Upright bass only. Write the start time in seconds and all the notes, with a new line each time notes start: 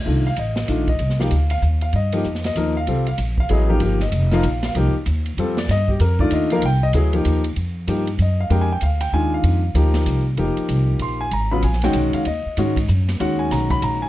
0.06 C2
0.37 A1
0.68 A#1
1.00 C2
1.31 D2
1.62 D#2
1.93 G2
2.25 F2
2.55 D#2
2.87 C2
3.18 A#1
3.50 A1
3.81 G1
4.12 F1
4.44 A#1
4.75 C2
4.94 muted upright bass stroke
5.06 D#2
5.37 F2
5.68 G2
6.00 F2
6.31 D#2
6.62 C2
6.93 D2
7.25 D#2
7.56 F2
7.87 G2
8.18 F#2
8.50 F2
8.82 D2
9.12 D#2
9.43 F2
9.74 D2
10.06 C2
10.37 F1
10.57 muted upright bass stroke
10.69 C2
10.99 A#1
11.31 G#1
11.62 A#1
11.94 B1
12.14 muted upright bass stroke
12.26 D#2
12.46 muted upright bass stroke
12.57 G#2
12.88 F#2
13.20 D#2
13.51 B1
13.82 A#1